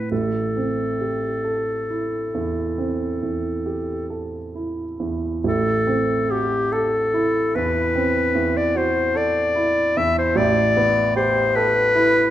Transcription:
Already playing: A2 E4 F#4 A4
0.11 A1 A4
0.57 C4
1.01 G4
1.44 A4
1.90 E4
2.35 E2
2.78 C4
3.22 E2
3.66 G4
4.10 A4
4.55 E4
5.00 E2
5.44 A1 A4
5.87 C4
6.31 F#4 G4
6.72 A4
7.14 E4
7.55 E2 B4
7.96 C4
8.35 E2
8.57 D5
8.75 F#4 C5
9.15 A4 D5
9.55 E4
9.97 E2 E5
10.18 C5
10.36 A1 D5
10.77 B3
11.16 G4 C5
11.56 A4 B4
11.95 E4

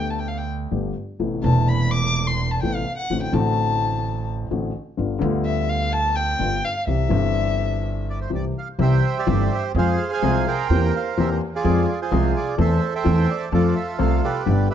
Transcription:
Already playing: D2 D3 A3 B3 G4 G5
0.10 A5
0.19 G5
0.28 F5
0.37 G5
0.71 G1 G2 D3 A3 B3 G4
1.19 A1 A2 C3 A3 B3 E4
1.42 E1 E2 C3 A3 B3 E4 A5
1.68 B5
1.91 D6
2.27 C6
2.51 A5
2.62 A1 A2 C3 A3 B3 E4 G5
2.75 F5
2.98 F#5
3.10 A1 A2 D3 A3 C4 F#4
3.23 G5
3.32 A1 A2 D3 A3 C4 A5
3.37 F#4
4.51 A1 A2 D3 A3 C4 F#4
4.97 G1 G2 D3 G3 B3 F4
5.19 D2 D3 G3 B3
5.23 F4
5.45 E5
5.69 F5
5.93 A5
6.16 G5
6.39 G1 G2 D3 G3 B3 F4
6.64 F5
6.87 C2 C3 E3 G3 C4 G4 E5
7.09 G1 G2 E3 G3 C4 G4
8.10 D5
8.21 C5
8.30 C2 C3 E3 G3 C4 G4
8.35 D5
8.58 F5
8.79 C2 C3 E3 G3 C4 G4 C5 E5
8.83 G5
9.18 G4 D5
9.27 G1 G2 E3 G3 C4 G4
9.55 E5
9.75 F2 F3 G#3 C4 G#4 C5 F5
10.13 C5 F5 G#5
10.22 C2 C3 F3 G#3 C4 G#4
10.47 A#4 C5 G5
10.70 E2 E3 A#3 C4 G4
10.96 F5
11.18 E2 E3 A#3 C4 G4 E5
11.31 C5
11.55 F4 G#4 D5
11.64 F2 F3 G#3 C4 G#4
11.89 D5
12.02 F4 G#4 C5
12.11 C2 C3 F3 G#3 C4 G#4
12.37 D5
12.58 E2 E3 A3 C4 A4 C5 E5
12.95 C5 E5 G5
13.04 E2 E3 A3 C4 A4
13.30 D5
13.52 F2 F3 A3 C4 F4 A4 D5
13.76 E5
13.99 C2 C3 F3 A3 C4 A4 F5
14.24 G4 B4 D5
14.46 G1 G2 D3 G3 B3 G4
14.70 G4 B4 E5

